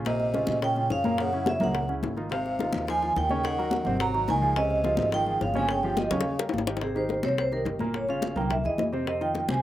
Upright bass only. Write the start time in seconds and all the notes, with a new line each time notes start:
Already playing: A#1
0.48 A#2
0.90 F#2
1.61 C#2
2.03 G#1
2.74 D#2
3.16 D#2
3.87 G#1
4.29 C#2
4.98 G#1
5.41 G1
6.11 D#2
6.53 G#1
7.24 C2
7.65 G1
8.36 C2
8.64 D#2
8.78 F2
9.48 C2